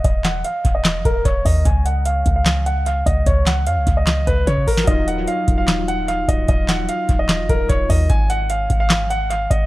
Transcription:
<<
  \new Staff \with { instrumentName = "Grand piano" } { \time 4/4 \key ees \minor \tempo 4 = 149 ees''8 ges''8 f''8. ees''8. bes'8 des''8 ees''8 | aes''8 ges''8 f''8. f''8. ges''8 f''8 ees''8 | des''8 ges''8 f''8. ees''8. ces''8 des''8 bes'8 | ees''8 ges''8 f''8. f''8. ges''8 f''8 ees''8 |
ees''8 ges''8 f''8. ees''8. bes'8 des''8 ees''8 | aes''8 ges''8 f''8. f''8. ges''8 f''8 ees''8 | }
  \new Staff \with { instrumentName = "Synth keys" } { \time 4/4 \key ees \minor r1 | r1 | r1 | <ges ees' f'>1 |
r1 | r1 | }
  \new Staff \with { instrumentName = "808-style bass" } { \clef bass \time 4/4 \key ees \minor ees,,4 r8 ees,,8. f,,16 ees,,8 ees,,8 ees,8 | des,4. des,2 des,8 | des,4 f,16 des,16 des,4 des,8 des8 r8 | ees,,4 r8 ees,,2 des,,8 |
ees,,4 r8 ees,,8. f,,16 ees,,8 ees,,8 ees,8 | aes,,4. aes,,2 aes,,8 | }
  \new DrumStaff \with { instrumentName = "Drums" } \drummode { \time 4/4 <hh bd>8 <hc hh sn>8 hh8 <hh bd>8 <hc hh sn>8 <hh bd>8 <hh bd>8 <hho bd>8 | <hh bd>8 hh8 hh8 <hh bd>8 <hc hh sn>8 hh8 hh8 <hh bd>8 | <hh bd>8 <hc hh sn>8 hh8 <hh bd>8 <hc hh sn>8 <hh bd>8 <hh bd>16 bd16 <hho bd>16 sn16 | <hh bd>8 hh8 hh8 <hh bd>8 <hc hh sn>8 hh8 hh8 <hh bd>8 |
<hh bd>8 <hc hh sn>8 hh8 <hh bd>8 <hc hh sn>8 <hh bd>8 <hh bd>8 <hho bd>8 | <hh bd>8 hh8 hh8 <hh bd>8 <hc hh sn>8 hh8 hh8 <hh bd>8 | }
>>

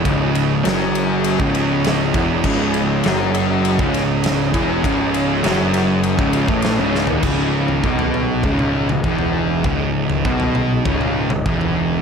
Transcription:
<<
  \new Staff \with { instrumentName = "Tonewheel organ" } { \time 4/4 \key cis \minor \tempo 4 = 100 <cis' gis' dis''>1~ | <cis' gis' dis''>1~ | <cis' gis' dis''>1 | <cis gis dis'>1~ |
<cis gis dis'>1 | }
  \new Staff \with { instrumentName = "Distorted electric guitar" } { \clef bass \time 4/4 \key cis \minor <cis, cis>4 <fis, fis>4~ <fis, fis>16 <cis, cis>4~ <cis, cis>16 <e, e>8 | <cis, cis>4 <fis, fis>4~ <fis, fis>16 <cis, cis>4~ <cis, cis>16 <e, e>8 | <cis, cis>4 <fis, fis>4~ <fis, fis>16 <cis, cis>8 <a, a>8 <cis, cis>8 <dis, dis>16 | <cis, cis>4 <b, b>4 <cis, cis>8. cis,16 <e, e>4 |
<cis, cis>4 <b, b>4 <cis, cis>8. cis,16 <e, e>4 | }
  \new Staff \with { instrumentName = "Distorted electric guitar" } { \clef bass \time 4/4 \key cis \minor <cis, cis>4 <fis, fis>4~ <fis, fis>16 <cis, cis>4~ <cis, cis>16 <e, e>8 | <cis, cis>4 <fis, fis>4~ <fis, fis>16 <cis, cis>4~ <cis, cis>16 <e, e>8 | <cis, cis>4 <fis, fis>4~ <fis, fis>16 <cis, cis>8 <a, a>8 <cis, cis>8 <dis, dis>16 | <cis, cis>4 <b, b>4 <cis, cis>8. cis,16 <e, e>4 |
<cis, cis>4 <b, b>4 <cis, cis>8. cis,16 <e, e>4 | }
  \new Staff \with { instrumentName = "Picked electric bass" } { \clef bass \time 4/4 \key cis \minor cis,,4 fis,,4~ fis,,16 cis,,4~ cis,,16 e,,8 | cis,,4 fis,,4~ fis,,16 cis,,4~ cis,,16 e,,8 | cis,,4 fis,,4~ fis,,16 cis,,8 a,,8 cis,,8 dis,,16 | cis,,4 b,,4 cis,,8. cis,,16 e,,4 |
cis,,4 b,,4 cis,,8. cis,,16 e,,4 | }
  \new DrumStaff \with { instrumentName = "Drums" } \drummode { \time 4/4 <bd cymr>8 cymr8 <cymr sn>8 cymr8 cymr16 bd16 cymr8 <cymr sn>8 <bd cymr>8 | <cymc bd>8 cymr8 <cymr sn>8 cymr8 cymr16 bd16 <cymr sn>8 <cymr sn>8 <bd cymr>8 | <bd cymr>8 cymr8 <cymr sn>8 <cymr sn>8 cymr16 bd16 cymr16 bd16 <cymr sn>8 sn16 tomfh16 | <cymc bd tomfh>8. tomfh16 bd16 tomfh16 toml8 <bd tomfh>16 toml8 <tomfh toml>16 bd16 tomfh8. |
<bd tomfh>8. tomfh16 bd16 tomfh16 toml8 <bd tomfh>16 toml8 <tomfh toml>16 bd16 tomfh8. | }
>>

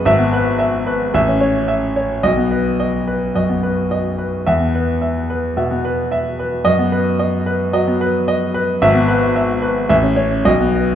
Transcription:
<<
  \new Staff \with { instrumentName = "Grand piano" } { \time 4/4 \key e \major \tempo 4 = 110 << { e''4 r4 e''4 r4 | dis''4 r2. | e''4 r2. | dis''4 r2. |
e''4 r4 e''4 dis''4 | } \\ { r8 b'8 e''8 b'8 r8 cis''8 e''8 cis''8 | r8 b'8 dis''8 b'8 dis''8 b'8 dis''8 b'8 | r8 b'8 e''8 b'8 e''8 b'8 e''8 b'8 | r8 b'8 dis''8 b'8 dis''8 b'8 dis''8 b'8 |
r8 b'8 e''8 b'8 r8 cis''8 r8 b'8 | } >> }
  \new Staff \with { instrumentName = "Grand piano" } { \clef bass \time 4/4 \key e \major gis,,16 b8 r4 r16 a,,16 cis'8 r4 r16 | b,,16 b8 r4 r16 fis,16 b8 r4 r16 | e,16 b8 r4 r16 b,16 b8 r4 r16 | fis,16 b8 r4 r16 fis16 b8 r4 r16 |
gis,,16 b8 r4 r16 a,,16 cis'8 r16 b,,16 b8 r16 | }
>>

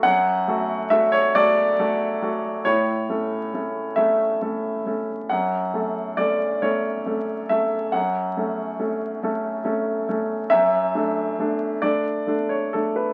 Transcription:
\new Staff \with { instrumentName = "Grand piano" } { \time 6/8 \key fis \minor \tempo 4. = 46 << { fis''4 e''16 cis''16 d''4. | cis''4. e''4. | fis''4 d''8 cis''4 e''8 | fis''4. r4. |
e''4. d''8. cis''16 a'16 b'16 | } \\ { fis,8 <a fis' a'>8 <a fis' a'>8 <a fis' a'>8 <a fis' a'>8 <a fis' a'>8 | a,8 <a cis' a'>8 <a cis' a'>8 <a cis' a'>8 <a cis' a'>8 <a cis' a'>8 | fis,8 <a cis' a'>8 <a cis' a'>8 <a cis' a'>8 <a cis' a'>8 <a cis' a'>8 | fis,8 <a cis' a'>8 <a cis' a'>8 <a cis' a'>8 <a cis' a'>8 <a cis' a'>8 |
fis,8 <a d' a'>8 <a d' a'>8 <a d' a'>8 <a d' a'>8 <a d'>8 | } >> }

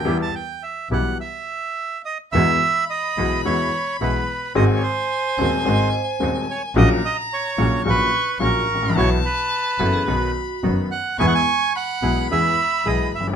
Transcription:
<<
  \new Staff \with { instrumentName = "Violin" } { \time 4/4 \key e \minor \tempo 4 = 108 r1 | \key e \major b''1 | gis''1 | ais''2 cis'''4 cis'''4 |
a''2 b''4. r8 | cis'''4 b''2. | }
  \new Staff \with { instrumentName = "Bandoneon" } { \time 4/4 \key e \minor g''16 a''16 g''8 e''8 fis''8 e''4. dis''8 | \key e \major e''4 dis''4 cis''4 b'4 | dis''16. cis''32 bis'2 r4 cis''8 | dis''8 dis''8 cis''4 b'4 ais'4 |
cis''8 b'2 r4 fis''8 | gis''32 fis''32 gis''8. fis''4 e''4 dis''8 e''8 | }
  \new Staff \with { instrumentName = "Vibraphone" } { \time 4/4 \key e \minor r1 | \key e \major r1 | r4. bis'8 dis''8 bis'8. r8. | r1 |
r4. a'16 gis'16 fis'4~ fis'16 r8. | r1 | }
  \new Staff \with { instrumentName = "Bandoneon" } { \time 4/4 \key e \minor <b e' g'>8 r4 <b e' g'>8 r2 | \key e \major <gis e' fis'>8 r4 <gis e' fis'>8 <gis e' fis'>8 r8 <gis e' fis'>8 r8 | <gis bis fis'>8 r4 <gis bis fis'>8 <gis bis fis'>8 r8 <gis bis fis'>8 r8 | <ais cis' fis'>8 r4 <ais cis' fis'>8 <ais cis' fis'>8 r8 <ais cis' fis'>8 r8 |
<b e' fis'>8 r4 <b e' fis'>8 <b dis' fis'>8 r8 <b dis' fis'>8 r8 | <b e' gis'>8 r4 <b e' gis'>8 <b e' gis'>8 r8 <b e' gis'>8 r8 | }
  \new Staff \with { instrumentName = "Upright piano" } { \clef bass \time 4/4 \key e \minor <e, e g b g'>8 r4 <b,, b, e g b g'>8 r2 | \key e \major <e, e gis b fis'>8 r4 <b,, b, e gis b fis'>8 <e, e gis b fis'>8 r8 <b,, b, e gis b fis'>8 r8 | <gis,, gis, dis gis bis fis'>8 r4 <dis,, dis, dis gis bis fis'>8 <gis,, gis, dis gis bis fis'>8 r8 <dis,, dis, dis gis bis fis'>8 r8 | <ais,, ais, cis fis ais fis'>8 r4 <ais,, ais, cis fis ais fis'>8 <ais,, ais, cis fis ais fis'>8 r8 <ais,, ais, cis fis ais fis'>8 r32 gis,,32 a,,32 ais,,32 |
<b,, b, e fis b fis'>8 r4 <fis,, fis, e fis b fis'>8 <b,, b, dis fis b fis'>8 r8 <fis,, fis, dis fis b fis'>8 r8 | <e, e gis b gis'>8 r4 <b,, b, e gis b gis'>8 <e, e gis b gis'>8 r8 <b,, b, e gis b gis'>8 r32 fis,,32 g,,32 r32 | }
  \new Staff \with { instrumentName = "Double bass" } { \clef bass \time 4/4 \key e \minor e,8 r4 b,,8 r2 | \key e \major e,8 r4 b,,8 e,8 r8 b,,8 r8 | gis,,8 r4 dis,8 gis,,8 r8 dis,8 r8 | ais,,8 r4 ais,,8 ais,,8 r8 ais,,8 a,,8 |
b,,8 r4 fis,,8 b,,8 r8 fis,,8 r8 | e,8 r4 b,,8 e,8 r8 b,,8 g,,8 | }
>>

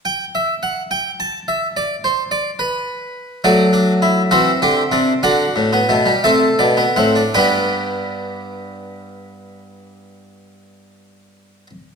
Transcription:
<<
  \new Staff \with { instrumentName = "Harpsichord" } { \time 6/8 \key g \major \tempo 4. = 63 << { g''8 e''8 fis''8 g''8 a''8 e''8 | d''8 c''8 d''8 b'4. | d''4. e''4. | fis''4. e''8 d''8 fis''8 |
<g b g''>2.~ | <g b g''>2. | } \\ { r2. | r2. | fis'8 d'8 e'8 fis'8 g'8 d'8 | fis'4. a'4. |
b'2.~ | b'2. | } >> }
  \new Staff \with { instrumentName = "Harpsichord" } { \clef bass \time 6/8 \key g \major << { r2. | r2. | a4. c'4. | d'8. b16 a16 g16 a8. b16 c'16 d'16 |
d'2.~ | d'2. | } \\ { r2. | r2. | fis4. e8 d8 c8 | d8 a,8 b,8 c8 b,8 a,8 |
g,2.~ | g,2. | } >> }
>>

